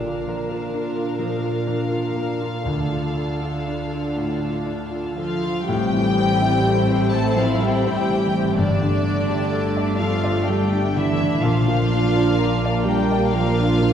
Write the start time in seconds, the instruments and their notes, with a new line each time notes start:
Already playing: double bass section A#1, cello section A#2, grand piano A#2, harp A#2 D4, viola section D4, violin section A#4 F5
0.05 grand piano F4
0.27 harp F3, grand piano A#4
0.51 grand piano F4
0.74 grand piano D4, harp D4
0.96 grand piano F4
1.19 grand piano F3, harp A#4
1.43 grand piano F4
1.67 harp F3, grand piano D4
1.91 grand piano F4
2.15 harp A#3, grand piano A#4
2.41 grand piano F4
2.63 double bass section D2, grand piano D2, harp D3, cello section D3, viola section D4, violin section A4
2.91 grand piano F4
3.13 harp D4, grand piano A4
3.41 grand piano F4
3.64 grand piano D4, harp A4
3.93 grand piano F4
4.16 grand piano A2, harp F4
4.42 grand piano F4
4.66 harp D4, grand piano D4
4.91 grand piano F4
5.16 harp F3, cello section F3, viola section F4, grand piano A4, violin section F5
5.43 grand piano F4
5.66 double bass section A1, harp A2, grand piano A2, cello section G3, french horn section A3 C4, violin section C4 E4 G5, viola section G4
5.93 grand piano E3
5.99 harp A3
6.17 grand piano C4
6.31 harp C4
6.41 grand piano E4
6.64 harp A4, grand piano A4
6.90 grand piano C5
6.97 harp C4
7.12 cello section A3, viola section A4, grand piano A4, violin section A5
7.30 harp C5
7.36 cello section F3, viola section F4, grand piano C5, violin section F5
7.60 cello section G3, viola section G4, harp A4, grand piano A4, violin section G5
7.86 grand piano C4
7.94 harp A3
8.10 grand piano E3
8.26 harp E3
8.33 grand piano C4
8.56 double bass section G1, harp G2, grand piano G2, cello section D3, violin section A3 D4 D5, viola section D4, french horn section D4
8.81 grand piano D3
8.89 harp A3
9.05 grand piano D4
9.20 harp D4
9.29 grand piano G4
9.52 harp A4, grand piano A4
9.77 grand piano D5
9.85 harp D4
10.00 cello section F3, viola section F4, grand piano A4, violin section F5
10.15 harp D5
10.24 grand piano D5
10.47 cello section G3, viola section G4, harp A4, grand piano A4, violin section G5
10.73 grand piano D4
10.79 harp A3
10.95 grand piano D3, cello section E3, viola section E4, violin section E5
11.11 harp D3
11.20 grand piano D4
11.41 double bass section A#1, harp A#2, grand piano A#2, cello section F3, violin section A#3 F5, french horn section A#3, viola section F4
11.68 grand piano F3
11.92 grand piano D4
12.06 harp D4
12.16 grand piano F4
12.38 harp A#4, grand piano A#4
12.65 grand piano D5
12.85 cello section G3, viola section G4, grand piano A#4, violin section G5
13.01 harp D5
13.11 grand piano D5
13.32 cello section F3, viola section F4, harp A#4, grand piano A#4, violin section F5
13.59 grand piano D4
13.82 grand piano F3